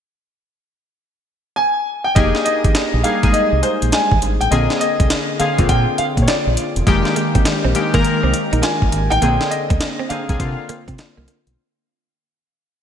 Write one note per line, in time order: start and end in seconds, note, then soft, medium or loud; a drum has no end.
1.56 2.02 G#5 loud
2.04 2.16 G5 medium
2.15 2.31 F1 loud
2.15 3.00 A#3 medium
2.15 3.00 D#4 medium
2.15 3.00 G4 medium
2.15 3.01 G#4 medium
2.15 2.43 D#5 medium
2.15 kick loud
2.15 closed hi-hat medium
2.35 snare medium
2.45 3.00 D#5 loud
2.45 closed hi-hat medium
2.65 2.73 G#1 medium
2.65 kick medium
2.65 closed hi-hat medium
2.75 snare loud
2.75 closed hi-hat medium
2.94 3.02 A#1 loud
3.03 3.22 G3 medium
3.03 3.22 A#3 medium
3.03 3.22 D#4 medium
3.03 3.23 G#4 medium
3.03 3.34 F5 medium
3.03 closed hi-hat medium
3.23 3.32 G#1 medium
3.23 4.31 G#3 medium
3.23 4.31 A#3 medium
3.23 4.31 D#4 medium
3.23 4.31 G#4 medium
3.23 kick medium
3.23 closed hi-hat medium
3.33 3.64 D#5 medium
3.33 closed hi-hat medium
3.53 3.61 C2 medium
3.63 3.93 C5 medium
3.63 closed hi-hat medium
3.82 3.91 A#1 medium
3.82 closed hi-hat medium
3.92 4.42 G#5 medium
3.92 snare loud
3.92 closed hi-hat medium
4.12 4.20 G#1 medium
4.12 kick medium
4.22 4.37 G#1 medium
4.22 closed hi-hat medium
4.41 4.50 A1 medium
4.41 4.52 G5 medium
4.41 closed hi-hat medium
4.51 4.67 A#1 loud
4.51 5.35 D3 medium
4.51 5.36 A#3 medium
4.51 5.36 C4 medium
4.51 5.36 G#4 medium
4.51 4.79 D#5 medium
4.51 closed hi-hat medium
4.70 snare medium
4.80 5.35 D#5 loud
4.80 closed hi-hat medium
5.00 5.08 C2 medium
5.00 kick medium
5.00 closed hi-hat medium
5.10 snare loud
5.10 closed hi-hat medium
5.39 5.57 D3 medium
5.39 5.57 A#3 medium
5.39 5.58 C4 medium
5.39 5.58 G#4 medium
5.39 5.70 F5 medium
5.39 muted fingered electric bass stroke soft
5.39 closed hi-hat medium
5.58 5.67 A#1 medium
5.58 6.66 D3 medium
5.58 6.66 A#3 medium
5.58 6.66 C4 medium
5.58 6.67 F4 medium
5.58 kick medium
5.58 closed hi-hat medium
5.69 5.85 A#2 loud
5.69 5.96 G5 medium
5.69 kick medium
5.69 closed hi-hat medium
5.98 6.04 F5 medium
5.98 muted fingered electric bass stroke soft
5.98 closed hi-hat medium
6.17 6.26 A#2 medium
6.17 kick medium
6.17 closed hi-hat medium
6.22 6.28 C#5 medium
6.28 6.73 D5 medium
6.28 muted fingered electric bass stroke soft
6.28 snare loud
6.28 closed hi-hat medium
6.47 6.55 A#1 medium
6.57 closed hi-hat medium
6.76 6.85 E1 medium
6.76 closed hi-hat medium
6.87 7.02 F1 loud
6.87 7.71 D#3 medium
6.87 7.71 G#3 medium
6.87 7.71 A#3 medium
6.87 7.71 G4 loud
6.87 kick loud
6.87 closed hi-hat medium
7.05 muted clean electric guitar stroke soft
7.05 snare medium
7.16 7.30 G#3 medium
7.16 closed hi-hat medium
7.35 7.44 G#1 medium
7.35 7.43 C4 medium
7.35 kick medium
7.35 closed hi-hat medium
7.45 snare loud
7.45 closed hi-hat medium
7.64 7.73 A#1 medium
7.64 7.72 C4 medium
7.75 7.93 D#3 medium
7.75 7.93 G#3 medium
7.75 7.93 A#3 medium
7.75 7.93 G4 medium
7.75 muted clean electric guitar stroke soft
7.75 closed hi-hat medium
7.94 8.03 G#1 medium
7.94 9.01 D#3 medium
7.94 9.01 G#3 medium
7.94 8.02 A#3 medium
7.94 9.02 A#3 medium
7.94 9.02 A#4 loud
7.94 kick medium
7.94 closed hi-hat medium
8.04 closed hi-hat medium
8.23 8.32 C2 medium
8.23 8.31 C4 medium
8.34 muted clean electric guitar stroke soft
8.34 closed hi-hat medium
8.53 8.61 A#1 loud
8.53 8.61 D#4 medium
8.53 closed hi-hat medium
8.62 8.77 F4 medium
8.62 9.13 G#5 loud
8.62 snare loud
8.62 closed hi-hat medium
8.82 8.91 G#1 medium
8.82 kick medium
8.92 9.08 G#1 medium
8.92 muted clean electric guitar stroke soft
8.92 closed hi-hat medium
9.10 9.20 A1 medium
9.10 9.19 D#4 medium
9.10 9.52 G5 loud
9.10 closed hi-hat soft
9.22 9.38 A#1 loud
9.22 10.06 D3 medium
9.22 9.36 A#3 medium
9.22 10.06 A#3 medium
9.22 10.06 C4 medium
9.22 10.06 G#4 medium
9.22 closed hi-hat medium
9.41 snare medium
9.50 10.06 D#5 medium
9.50 muted clean electric guitar stroke soft
9.50 closed hi-hat medium
9.70 9.79 D2 medium
9.70 9.78 C4 medium
9.70 kick loud
9.70 closed hi-hat medium
9.81 muted clean electric guitar stroke soft
9.81 snare loud
9.81 closed hi-hat medium
9.99 10.08 C4 medium
10.09 10.28 D3 medium
10.09 10.28 A#3 medium
10.09 10.28 C4 medium
10.09 10.24 D4 medium
10.09 10.28 G#4 medium
10.09 11.23 F5 medium
10.09 muted fingered electric bass stroke soft
10.09 closed hi-hat medium
10.29 10.38 C2 medium
10.29 10.38 D3 medium
10.29 10.38 A#3 medium
10.29 10.39 C4 medium
10.29 10.40 G#4 medium
10.29 kick medium
10.29 closed hi-hat medium
10.39 10.55 C3 loud
10.39 11.51 D3 medium
10.39 11.52 A#3 medium
10.39 11.52 C4 medium
10.39 11.52 F4 medium
10.39 muted clean electric guitar stroke soft
10.39 kick medium
10.39 closed hi-hat medium
10.69 10.83 A#3 medium
10.69 muted fingered electric bass stroke soft
10.69 closed hi-hat medium
10.88 10.96 C3 loud
10.88 10.96 C4 medium
10.88 kick medium
10.88 closed hi-hat medium
10.98 muted clean electric guitar stroke soft
10.98 snare loud
10.98 closed hi-hat medium
11.17 11.26 C2 medium
11.17 11.25 A#3 medium
11.28 11.42 A#3 medium
11.28 closed hi-hat medium
11.47 11.55 B1 medium
11.47 closed hi-hat medium